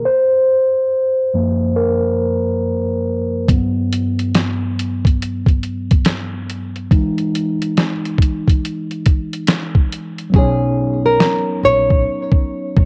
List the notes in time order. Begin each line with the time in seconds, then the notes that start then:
0.05 C5
1.34 F#2 F3 A#3
1.76 A#4
3.48 G2 F#3 B3, kick, closed hi-hat
3.92 closed hi-hat
4.19 closed hi-hat
4.34 snare, closed hi-hat
4.79 closed hi-hat
5.05 kick, closed hi-hat
5.22 closed hi-hat
5.46 kick, closed hi-hat
5.63 closed hi-hat
5.91 kick, closed hi-hat
6.05 snare, closed hi-hat
6.50 closed hi-hat
6.76 closed hi-hat
6.91 E3 G#3 D#4, kick, closed hi-hat
7.18 closed hi-hat
7.35 closed hi-hat
7.62 closed hi-hat
7.77 snare, closed hi-hat
8.05 closed hi-hat
8.18 kick, closed hi-hat
8.48 kick, closed hi-hat
8.65 closed hi-hat
8.91 closed hi-hat
9.06 kick, closed hi-hat
9.33 closed hi-hat
9.47 snare, closed hi-hat
9.75 kick
9.92 closed hi-hat
10.18 closed hi-hat
10.30 F#3 B3, kick
10.34 B1 C#4 D#4 G#4
10.38 C#5
11.06 A#4
11.20 snare
11.63 A#1 C#5
11.90 kick
12.32 kick
12.77 B1, kick